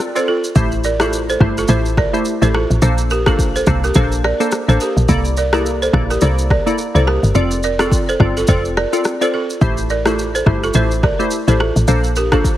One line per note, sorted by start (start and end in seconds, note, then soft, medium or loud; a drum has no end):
0.15 0.27 C4 medium
0.15 0.27 F4 medium
0.15 0.27 A4 medium
0.15 0.26 A4 medium
0.15 0.25 C5 medium
0.15 0.28 D5 medium
0.15 shaker soft
0.28 0.41 F4 medium
0.28 0.41 A4 medium
0.44 shaker soft
0.55 1.37 A1 loud
0.55 0.72 A3 medium
0.55 0.72 E4 medium
0.55 0.72 G4 medium
0.55 0.72 C5 loud
0.55 kick loud
0.55 shaker medium
0.72 shaker soft
0.84 0.98 A#4 medium
0.84 0.97 D5 medium
0.84 shaker soft
1.00 1.12 A3 medium
1.00 1.12 E4 medium
1.00 1.11 F4 medium
1.00 1.12 G4 medium
1.00 1.10 A4 medium
1.00 1.12 C5 medium
1.00 cross-stick loud
1.00 shaker soft
1.13 shaker medium
1.29 1.39 A4 medium
1.29 1.39 C5 medium
1.29 shaker soft
1.40 1.64 G1 medium
1.40 1.57 A3 medium
1.40 1.57 E4 medium
1.40 1.57 G4 medium
1.40 1.57 C5 medium
1.40 kick loud
1.40 cross-stick loud
1.58 1.67 F4 medium
1.58 1.67 A4 medium
1.58 shaker soft
1.68 2.06 A1 loud
1.68 1.85 A3 medium
1.68 1.85 E4 medium
1.68 1.85 G4 medium
1.68 1.83 A4 medium
1.68 1.85 C5 loud
1.68 1.82 C5 medium
1.68 shaker medium
1.85 shaker soft
1.97 2.11 A#4 medium
1.97 2.11 D5 medium
1.97 kick loud
1.97 cross-stick medium
2.13 2.25 A3 medium
2.13 2.25 E4 medium
2.13 2.25 G4 medium
2.13 2.26 C5 medium
2.13 shaker medium
2.25 shaker medium
2.42 2.66 A1 medium
2.42 2.54 A3 medium
2.42 2.54 E4 medium
2.42 2.54 G4 medium
2.42 2.52 A4 medium
2.42 2.54 C5 medium
2.42 2.52 C5 medium
2.42 shaker soft
2.54 2.68 F4 medium
2.54 2.67 A4 medium
2.54 cross-stick loud
2.70 2.80 A1 medium
2.70 shaker soft
2.82 3.63 A#1 loud
2.82 2.98 A#3 medium
2.82 2.98 D4 medium
2.82 2.99 A4 medium
2.82 2.99 C5 loud
2.82 shaker medium
2.98 shaker soft
3.10 3.24 G4 medium
3.10 3.24 A#4 medium
3.10 shaker soft
3.26 3.39 A#3 medium
3.26 3.39 D4 medium
3.26 3.37 F4 medium
3.26 3.39 A4 medium
3.26 3.37 A4 medium
3.26 3.39 C5 medium
3.26 kick medium
3.26 cross-stick loud
3.26 shaker soft
3.39 kick medium
3.39 shaker medium
3.56 3.65 A4 medium
3.56 3.65 C5 medium
3.56 shaker medium
3.67 3.91 C2 medium
3.67 3.83 A#3 medium
3.67 3.83 D4 medium
3.67 3.84 A4 medium
3.67 3.84 C5 medium
3.67 kick loud
3.67 cross-stick medium
3.67 shaker medium
3.84 3.94 G4 medium
3.84 3.93 A#4 medium
3.84 shaker soft
3.95 4.33 A#1 loud
3.95 4.12 A#3 medium
3.95 4.12 D4 medium
3.95 4.12 A4 medium
3.95 4.09 A4 medium
3.95 4.12 C5 loud
3.95 4.08 C5 medium
3.95 kick medium
3.95 shaker medium
4.12 shaker soft
4.24 4.37 A#4 medium
4.24 4.37 D5 medium
4.24 cross-stick medium
4.40 4.52 A#3 medium
4.40 4.52 D4 medium
4.40 4.52 A4 medium
4.40 4.52 C5 medium
4.40 shaker medium
4.52 cross-stick medium
4.52 shaker medium
4.68 4.78 A1 medium
4.68 4.80 A#3 medium
4.68 4.80 D4 medium
4.68 4.80 A4 medium
4.68 4.78 A4 medium
4.68 4.80 C5 medium
4.68 4.78 C5 medium
4.68 shaker medium
4.80 4.94 G4 medium
4.80 4.93 A#4 medium
4.80 shaker medium
4.97 5.07 A#1 medium
4.97 shaker soft
5.08 5.89 C2 loud
5.08 5.25 A#3 medium
5.08 5.25 E4 medium
5.08 5.25 A4 medium
5.08 5.25 D5 loud
5.08 kick loud
5.08 shaker medium
5.25 shaker soft
5.37 5.50 A#4 medium
5.37 5.50 D5 medium
5.37 shaker soft
5.53 5.65 A#3 medium
5.53 5.65 E4 medium
5.53 5.63 G4 medium
5.53 5.65 A4 medium
5.53 5.63 A#4 medium
5.53 5.65 D5 medium
5.53 cross-stick loud
5.53 shaker soft
5.66 shaker medium
5.82 5.92 A4 medium
5.82 5.91 C5 medium
5.82 shaker medium
5.93 6.17 A#1 medium
5.93 6.10 A#3 medium
5.93 6.10 E4 medium
5.93 6.10 A4 medium
5.93 6.10 D5 medium
5.93 kick medium
5.93 cross-stick loud
6.10 6.20 G4 medium
6.10 6.19 A#4 medium
6.10 shaker soft
6.21 6.59 C2 loud
6.21 6.38 A#3 medium
6.21 6.38 E4 medium
6.21 6.38 A4 medium
6.21 6.35 A4 medium
6.21 6.35 C5 medium
6.21 6.38 D5 loud
6.21 shaker medium
6.39 shaker soft
6.50 6.64 A#4 medium
6.50 6.63 D5 medium
6.50 kick loud
6.50 cross-stick medium
6.66 6.78 A#3 medium
6.66 6.78 E4 medium
6.66 6.78 A4 medium
6.66 6.79 D5 medium
6.66 shaker medium
6.78 shaker medium
6.95 7.19 C2 medium
6.95 7.07 A#3 medium
6.95 7.07 E4 medium
6.95 7.07 A4 medium
6.95 7.05 A4 medium
6.95 7.04 C5 medium
6.95 7.07 D5 medium
6.95 shaker soft
7.07 7.20 G4 medium
7.07 7.20 A#4 medium
7.07 cross-stick medium
7.23 7.33 G1 medium
7.23 shaker medium
7.35 8.16 F1 loud
7.35 7.51 C4 medium
7.35 7.51 F4 medium
7.35 7.51 A4 medium
7.35 7.52 D5 loud
7.35 shaker medium
7.51 shaker soft
7.63 7.77 A#4 medium
7.63 7.76 D5 medium
7.63 shaker soft
7.79 7.91 C4 medium
7.79 7.92 F4 medium
7.79 7.90 F4 medium
7.79 7.92 A4 medium
7.79 7.89 A4 medium
7.79 7.92 D5 medium
7.79 cross-stick loud
7.79 shaker soft
7.92 kick medium
7.92 shaker medium
8.09 8.18 A4 medium
8.09 8.18 C5 medium
8.09 shaker medium
8.20 8.44 G1 medium
8.20 8.36 C4 medium
8.20 8.36 F4 medium
8.20 8.36 A4 medium
8.20 8.36 D5 medium
8.20 kick medium
8.20 cross-stick medium
8.37 8.47 F4 medium
8.37 8.46 A4 medium
8.37 shaker soft
8.47 8.86 F1 loud
8.47 8.65 C4 medium
8.47 8.65 F4 medium
8.47 8.65 A4 medium
8.47 8.62 A4 medium
8.47 8.61 C5 medium
8.47 8.65 D5 loud
8.47 kick medium
8.47 shaker medium
8.65 shaker soft
8.77 8.90 A#4 medium
8.77 8.90 D5 medium
8.77 cross-stick medium
8.93 9.05 C4 medium
8.93 9.05 F4 medium
8.93 9.05 A4 medium
8.93 9.05 D5 medium
8.93 shaker medium
9.04 cross-stick medium
9.04 shaker medium
9.21 9.33 C4 medium
9.21 9.33 F4 medium
9.21 9.33 A4 medium
9.21 9.31 A4 medium
9.21 9.31 C5 medium
9.21 9.33 D5 medium
9.21 shaker soft
9.34 9.47 F4 medium
9.34 9.46 A4 medium
9.50 shaker medium
9.61 10.42 A1 loud
9.61 9.78 A3 medium
9.61 9.78 E4 medium
9.61 9.78 G4 medium
9.61 9.78 C5 loud
9.61 kick loud
9.61 shaker medium
9.77 shaker soft
9.90 10.03 A#4 medium
9.90 10.03 D5 medium
9.90 shaker soft
10.06 10.18 A3 medium
10.06 10.18 E4 medium
10.06 10.16 F4 medium
10.06 10.18 G4 medium
10.06 10.16 A4 medium
10.06 10.18 C5 medium
10.06 cross-stick loud
10.06 shaker soft
10.19 shaker medium
10.35 10.45 A4 medium
10.35 10.44 C5 medium
10.35 shaker medium
10.46 10.70 G1 medium
10.46 10.63 A3 medium
10.46 10.63 E4 medium
10.46 10.63 G4 medium
10.46 10.63 C5 medium
10.46 kick medium
10.46 cross-stick loud
10.63 10.73 F4 medium
10.63 10.72 A4 medium
10.63 shaker soft
10.74 11.12 A1 loud
10.74 10.91 A3 medium
10.74 10.91 E4 medium
10.74 10.91 G4 medium
10.74 10.88 A4 medium
10.74 10.91 C5 loud
10.74 10.88 C5 medium
10.74 shaker medium
10.91 shaker soft
11.03 11.17 A#4 medium
11.03 11.16 D5 medium
11.03 kick loud
11.03 cross-stick medium
11.19 11.31 A3 medium
11.19 11.31 E4 medium
11.19 11.31 G4 medium
11.19 11.31 C5 medium
11.19 shaker medium
11.31 shaker medium
11.47 11.71 A1 medium
11.47 11.59 A3 medium
11.47 11.60 E4 medium
11.47 11.60 G4 medium
11.47 11.58 A4 medium
11.47 11.60 C5 medium
11.47 11.57 C5 medium
11.47 shaker medium
11.60 11.73 F4 medium
11.60 11.73 A4 medium
11.60 cross-stick loud
11.76 11.86 A1 medium
11.76 shaker soft
11.88 12.57 A#1 loud
11.88 12.04 A#3 medium
11.88 12.04 D4 medium
11.88 12.04 A4 medium
11.88 12.04 C5 loud
11.88 shaker medium
12.04 shaker soft
12.16 12.30 G4 medium
12.16 12.29 A#4 medium
12.16 shaker soft
12.32 12.44 A#3 medium
12.32 12.44 D4 medium
12.32 12.43 F4 medium
12.32 12.45 A4 medium
12.32 12.42 A4 medium
12.32 12.45 C5 medium
12.32 kick medium
12.32 cross-stick loud
12.32 shaker soft
12.44 kick medium
12.44 shaker medium